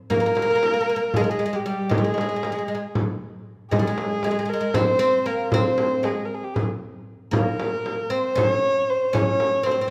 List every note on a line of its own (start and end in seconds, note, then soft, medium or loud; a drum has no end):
0.10 0.18 A#3 medium
0.10 1.18 A#4 loud
0.10 frame drum medium
0.20 0.25 A#3 medium
0.26 0.34 A#3 medium
0.35 0.41 A#3 soft
0.35 frame drum medium
0.42 0.49 A#3 medium
0.50 0.54 A#3 soft
0.55 0.62 A#3 medium
0.63 0.71 A#3 soft
0.63 frame drum medium
0.74 0.79 A#3 medium
0.81 0.88 A#3 soft
0.89 0.95 A#3 medium
0.96 1.03 A#3 medium
1.14 1.23 G#3 medium
1.14 1.23 G#4 medium
1.14 frame drum medium
1.21 1.30 G#3 medium
1.21 1.31 A#4 medium
1.29 1.38 G#3 medium
1.29 1.57 G#4 medium
1.39 1.44 G#3 medium
1.46 1.52 G#3 medium
1.53 1.60 G#3 medium
1.53 1.67 G4 medium
1.66 1.89 G3 medium
1.66 1.95 G4 medium
1.89 1.97 G#3 medium
1.89 frame drum loud
1.94 2.96 G#4 medium
1.98 2.03 G#3 soft
2.04 2.12 G#3 soft
2.14 2.20 G#3 soft
2.18 2.28 G#3 soft
2.18 frame drum medium
2.29 2.35 G#3 soft
2.36 2.43 G#3 soft
2.43 2.51 G#3 soft
2.43 frame drum medium
2.52 2.57 G#3 soft
2.58 2.66 G#3 soft
2.68 2.73 G#3 soft
2.75 2.82 G#3 soft
2.95 frame drum medium
3.71 3.78 G#3 medium
3.71 4.51 G#4 medium
3.71 frame drum medium
3.79 3.86 G3 medium
3.87 4.22 G#3 medium
3.98 frame drum medium
4.23 4.30 G#3 medium
4.23 frame drum medium
4.31 4.38 G#3 soft
4.39 4.44 G#3 medium
4.45 4.52 G#3 soft
4.45 4.76 A#4 medium
4.53 4.59 G#3 medium
4.61 4.69 G#3 soft
4.74 4.98 C4 medium
4.74 5.28 C5 loud
4.74 frame drum medium
4.99 5.27 C4 medium
5.26 5.53 A#3 medium
5.26 5.52 A#4 medium
5.52 6.07 C4 medium
5.52 6.06 C5 medium
5.52 frame drum medium
5.78 frame drum medium
6.03 6.24 G#3 medium
6.03 6.27 G#4 medium
6.03 frame drum medium
6.25 6.36 A#4 medium
6.34 6.45 G#4 medium
6.44 6.56 G4 medium
6.54 6.63 G#4 medium
6.54 frame drum medium
7.31 8.12 A#3 medium
7.31 8.12 A#4 medium
7.31 frame drum medium
7.60 frame drum medium
7.86 frame drum medium
8.10 8.35 C4 medium
8.10 8.39 C5 medium
8.35 9.12 C#4 medium
8.35 8.91 C#5 loud
8.35 frame drum medium
8.89 9.17 C5 medium
9.13 9.63 C#4 medium
9.13 9.68 C#5 loud
9.13 frame drum medium
9.40 frame drum medium
9.63 9.70 C4 medium
9.63 9.90 C5 medium
9.63 frame drum medium
9.71 9.79 C4 soft
9.81 9.87 C4 medium